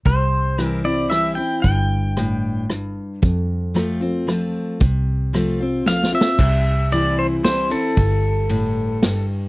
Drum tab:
CC |------------------|------------------|------------------|------------------|
RD |------------------|------------------|------------------|------------------|
SD |------r-----r-----|------r-----r-----|------r-----r-----|------r-----o-o-o-|
BD |o-----------------|o-----------------|o-----------------|o-----------------|

CC |x-----------------|------------------|
RD |------x-----x--x--|x-----x-----x-----|
SD |------------o-----|------------o-----|
BD |o-----------------|o-----------------|